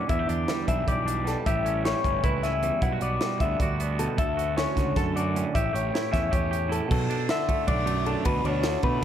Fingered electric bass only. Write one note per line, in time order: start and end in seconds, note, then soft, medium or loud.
0.09 0.25 E2 medium
0.29 0.45 E2 medium
0.68 0.84 B1 medium
0.88 1.34 B1 medium
1.47 1.93 A1 loud
2.04 2.20 G1 medium
2.24 2.71 C#2 medium
2.82 2.98 B1 medium
3.01 3.17 B1 medium
3.40 3.56 D2 medium
3.60 4.07 D2 medium
4.18 4.65 D2 medium
4.77 4.93 C#2 medium
4.96 5.43 F#2 medium
5.55 5.71 A1 medium
5.74 5.90 A1 medium
6.13 6.29 E2 medium
6.33 6.79 E2 medium
6.91 7.06 B1 loud
7.68 8.14 B1 medium
8.26 8.41 D2 medium
8.44 8.75 D2 medium
8.83 8.99 B2 medium